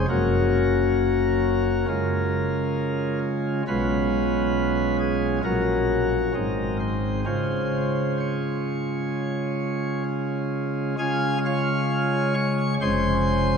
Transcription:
0.09 F#1 F#2 A#3 C#4 F#4 A#4
1.88 C#3 G#3 C#4 F4
3.67 B1 B2 G#3 C#4 F4 B4
5.00 G#4
5.44 A#1 A#2 F#3 C#4 F#4 A#4
6.35 G#1 G#2 G#3 C4 D#4
6.80 C5
7.26 C#3 G#3 C#4 F4 C5
8.20 C#5
10.99 C#3 G#3 C#4 F4 G#4 F5 G#5
11.45 F4 C#5 F5
12.35 C#5 C#6
12.81 F1 F2 G#3 C#4 G#4 C5 C6

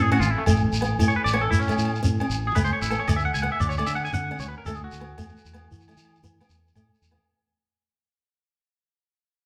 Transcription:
Already playing: A2
0.03 G#4
0.12 C#4 F#4, low agogo
0.20 A1 F4, shekere
0.30 E4
0.38 A3
0.46 A1 A3, low agogo, shekere
0.56 shekere
0.73 A1, shekere
0.81 B3, low agogo, shekere
0.99 A2 A3, low agogo, shekere
1.08 C#5, shekere
1.16 B4
1.24 A1 D5, shekere
1.33 B3 C#5, low agogo
1.41 A4
1.51 A2 E4, shekere
1.59 C#4, shekere
1.68 A3, low agogo, shekere
1.78 A2, shekere
1.85 low agogo
1.95 shekere
2.03 A2 C#4, shekere
2.20 C#4, low agogo
2.30 A1, shekere
2.47 G#4
2.55 C#2 A3 B4, low agogo, shekere
2.65 C5, shekere
2.73 C#5
2.82 A1 E4, shekere
2.90 B3 A4, low agogo, shekere
2.99 C#5
3.08 D2 A3 D5, low agogo, shekere
3.16 E5, shekere
3.25 F#5
3.34 C#2 G#5, shekere
3.42 B3 F#5, low agogo
3.52 E5
3.60 D2 D5, shekere
3.69 C#5, shekere
3.78 A3 D5, low agogo, shekere
3.86 D3 E5, shekere
3.95 F#5, low agogo
4.05 G#5, shekere
4.13 D3 D4 F#5, shekere
4.31 D4, low agogo
4.39 D2 C#5, shekere
4.48 B4
4.58 A#4
4.65 D2 A3 A4, low agogo, shekere
4.75 G#4, shekere
4.84 F#4
4.92 D2, shekere
5.00 B3, low agogo
5.18 E2 A3, low agogo, shekere
5.28 shekere
5.37 shekere
5.45 E2, shekere
5.53 B3, low agogo, shekere
5.71 E3, shekere
5.80 shekere
5.88 A3, low agogo, shekere
5.97 E3, shekere
6.05 low agogo
6.15 shekere
6.23 E3 B3, shekere
6.41 B3, low agogo, shekere
6.49 E2, shekere
6.68 shekere
6.75 A2 A3, low agogo, shekere
6.95 shekere
7.02 E2, shekere
7.11 B3, low agogo

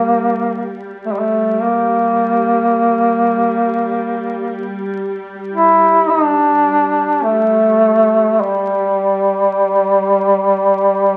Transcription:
Already playing: G3 A#3
1.04 A3
1.12 G3
1.19 A3
1.61 A#3
5.53 E4
6.09 D4
7.23 A3
8.40 G3

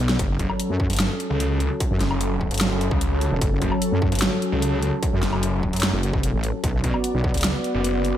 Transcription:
Already playing: B1 B3 F#4 D5
0.09 snare, closed hi-hat
0.19 F#1 F#3 C#4 A4, kick, closed hi-hat
0.39 F#1, kick, closed hi-hat
0.50 low woodblock
0.60 closed hi-hat
0.70 F#2
0.80 kick
0.90 G1, closed hi-hat
0.93 closed hi-hat
0.97 snare, closed hi-hat
1.00 closed hi-hat
1.20 closed hi-hat
1.30 C#2
1.40 closed hi-hat
1.60 closed hi-hat
1.80 kick, closed hi-hat
1.91 F#2
2.01 F#1, snare, closed hi-hat
2.11 F#1, low woodblock
2.21 closed hi-hat
2.41 kick
2.51 G1, closed hi-hat
2.54 closed hi-hat
2.58 snare, closed hi-hat
2.61 closed hi-hat
2.71 F#1
2.81 closed hi-hat
2.91 C#2, kick
3.01 closed hi-hat
3.21 closed hi-hat
3.31 E1
3.41 F#1, kick, closed hi-hat
3.62 F#1, kick, closed hi-hat
3.72 low woodblock
3.82 closed hi-hat
3.92 F#2
4.02 kick
4.12 G1, closed hi-hat
4.15 closed hi-hat
4.19 snare, closed hi-hat
4.22 closed hi-hat
4.42 closed hi-hat
4.52 C#2
4.62 closed hi-hat
4.82 closed hi-hat
5.03 kick, closed hi-hat
5.13 F#2
5.23 F#1, snare, closed hi-hat
5.33 F#1, low woodblock
5.43 closed hi-hat
5.63 kick
5.73 F#2, closed hi-hat
5.76 closed hi-hat
5.80 snare, closed hi-hat
5.83 closed hi-hat
5.93 F#1
6.03 closed hi-hat
6.13 kick
6.23 closed hi-hat
6.34 A1
6.44 closed hi-hat
6.64 B1 B3 F#4 D5, kick, closed hi-hat
6.84 B1, kick, closed hi-hat
6.94 low woodblock
7.04 closed hi-hat
7.14 B1
7.24 kick
7.34 C#2, closed hi-hat
7.37 closed hi-hat
7.41 snare, closed hi-hat
7.44 closed hi-hat
7.64 closed hi-hat
7.74 F#1
7.84 closed hi-hat
8.05 closed hi-hat

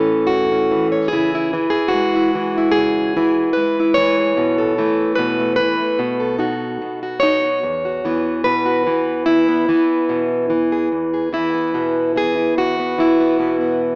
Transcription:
Already playing: A2 E3 C#4 A4 B4
0.27 E3 F#4
0.52 C#4
0.71 E3
0.92 C#5
1.08 G#4
1.12 C#3 E3 E4
1.35 E4
1.53 E3 E4
1.70 G#4
1.88 F#4
1.94 G#3
2.16 E4
2.35 E3
2.58 E4
2.72 G#4
2.77 C#3
3.17 E3 E4
3.53 G#3 B4
3.80 E4
3.94 E3 C#5
4.20 G#4
4.37 B2
4.58 A4
4.78 E3 A3
5.15 B2 B4
5.40 A3
5.56 E3 B4
5.80 A3
5.99 B2
6.20 A4
6.38 D#4 F#4
6.82 B2
7.03 F#4
7.20 D#4 C#5
7.44 F#4
7.63 E2
7.85 F#4
8.05 E3 B3
8.44 B2 B4
8.66 F#4
8.87 E3
9.26 E2 E4
9.48 B3
9.69 E3 B3
10.09 B2
10.50 E3
10.72 G#4
10.92 E2
11.14 G#4
11.33 E3 E4
11.54 B3
11.74 B2 B3
12.16 E3 G#4
12.38 E4
12.58 E2 F#4
12.79 B3
12.98 E3 E4
13.20 B3
13.39 B2 B3
13.61 B3

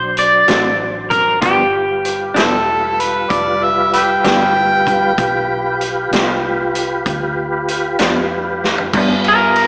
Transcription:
Already playing: B1 F#3 D4 C5
0.17 D5, closed hi-hat
0.48 A1 D3 A3 C4 F#4, snare, closed hi-hat
1.10 A#4, kick, closed hi-hat
1.41 G1 G2 F3 G3 B3 D4 F4 G4 B4, kick, closed hi-hat
2.05 closed hi-hat
2.34 E1 G2 F3 B3 D4 E4 A4, snare, closed hi-hat
3.00 B4, closed hi-hat
3.30 F1 D5, kick, closed hi-hat
3.64 E5
3.93 B4 E5 G5, closed hi-hat
4.24 G1 G2 F3 B3 D4 G5, snare, closed hi-hat
4.87 kick, closed hi-hat
5.18 B1 F4 G4 B4, kick, closed hi-hat
5.81 closed hi-hat
6.11 C2 G2 F3 B3 D4, snare, closed hi-hat
6.75 closed hi-hat
7.06 D2, kick, closed hi-hat
7.68 closed hi-hat
7.99 F2 G2 F3 B3 D4, snare, closed hi-hat
8.64 snare
8.78 floor tom
8.92 G2 F3 G3 B3 F4, kick, crash
8.97 D4
9.24 ride
9.28 A#4
9.56 ride

